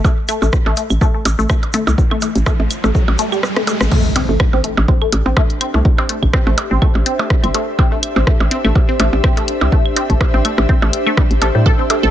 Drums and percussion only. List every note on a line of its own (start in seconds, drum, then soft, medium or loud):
0.04 kick loud
0.04 percussion blips medium
0.04 shaker soft
0.28 closed hi-hat medium
0.28 claves medium
0.28 shaker medium
0.42 percussion blips soft
0.42 shaker soft
0.53 kick loud
0.53 cross-stick medium
0.53 shaker soft
0.66 percussion blips medium
0.77 closed hi-hat medium
0.77 shaker medium
0.90 claves medium
0.90 shaker soft
1.01 kick loud
1.01 percussion blips soft
1.01 shaker soft
1.25 closed hi-hat medium
1.25 percussion blips medium
1.25 shaker medium
1.39 shaker soft
1.49 kick loud
1.49 cross-stick medium
1.49 claves medium
1.49 shaker soft
1.63 closed hi-hat soft
1.63 percussion blips soft
1.73 closed hi-hat medium
1.73 percussion blips medium
1.73 shaker medium
1.87 percussion blips medium
1.87 shaker soft
1.98 kick loud
1.98 shaker soft
2.11 percussion blips medium
2.11 claves medium
2.22 closed hi-hat medium
2.22 percussion blips soft
2.22 shaker medium
2.35 closed hi-hat soft
2.35 shaker soft
2.46 kick loud
2.46 cross-stick medium
2.46 percussion blips medium
2.46 shaker soft
2.60 percussion blips medium
2.71 closed hi-hat medium
2.71 claves medium
2.71 shaker medium
2.84 cross-stick medium
2.84 percussion blips soft
2.84 shaker soft
2.95 kick loud
2.95 shaker soft
3.08 percussion blips medium
3.19 closed hi-hat medium
3.19 shaker medium
3.32 claves medium
3.32 shaker medium
3.43 cross-stick medium
3.43 percussion blips soft
3.43 shaker soft
3.56 cross-stick medium
3.56 closed hi-hat soft
3.56 percussion blips medium
3.67 closed hi-hat medium
3.67 percussion blips medium
3.67 shaker medium
3.81 cross-stick medium
3.81 shaker soft
3.91 kick loud
3.91 crash loud
3.91 percussion blips soft
4.16 closed hi-hat medium
4.16 percussion blips medium
4.40 kick loud
4.40 cross-stick loud
4.40 claves medium
4.53 percussion blips soft
4.64 closed hi-hat medium
4.77 percussion blips medium
4.88 kick loud
5.02 claves medium
5.12 closed hi-hat medium
5.12 percussion blips soft
5.26 percussion blips medium
5.37 kick loud
5.37 cross-stick medium
5.37 percussion blips medium
5.50 closed hi-hat soft
5.61 closed hi-hat medium
5.61 claves medium
5.74 percussion blips soft
5.85 kick loud
5.98 percussion blips medium
6.09 closed hi-hat loud
6.23 kick medium
6.23 claves medium
6.33 kick loud
6.33 cross-stick loud
6.33 percussion blips soft
6.47 percussion blips medium
6.58 closed hi-hat medium
6.58 percussion blips medium
6.82 kick loud
6.82 claves medium
6.95 percussion blips soft
7.06 closed hi-hat loud
7.19 percussion blips medium
7.30 kick loud
7.30 cross-stick medium
7.44 closed hi-hat soft
7.44 claves medium
7.54 closed hi-hat loud
7.54 percussion blips soft
7.79 kick loud
7.79 percussion blips medium
8.03 closed hi-hat loud
8.03 claves medium
8.16 percussion blips soft
8.27 kick loud
8.27 cross-stick medium
8.40 percussion blips medium
8.51 closed hi-hat loud
8.65 claves medium
8.75 kick loud
8.75 percussion blips soft
9.00 closed hi-hat loud
9.00 percussion blips medium
9.13 percussion blips medium
9.24 kick loud
9.24 cross-stick medium
9.24 claves medium
9.37 closed hi-hat soft
9.37 percussion blips soft
9.48 closed hi-hat loud
9.61 percussion blips medium
9.72 kick loud
9.86 claves medium
9.96 closed hi-hat loud
9.96 percussion blips soft
10.10 kick medium
10.10 closed hi-hat soft
10.21 kick loud
10.21 cross-stick medium
10.21 percussion blips medium
10.34 percussion blips medium
10.45 closed hi-hat medium
10.45 claves medium
10.58 cross-stick medium
10.58 percussion blips soft
10.69 kick loud
10.82 percussion blips medium
10.93 closed hi-hat loud
11.07 claves medium
11.17 kick loud
11.17 cross-stick medium
11.17 percussion blips soft
11.31 closed hi-hat soft
11.42 closed hi-hat loud
11.42 percussion blips medium
11.66 kick loud
11.66 percussion blips soft
11.90 closed hi-hat medium
11.90 percussion blips medium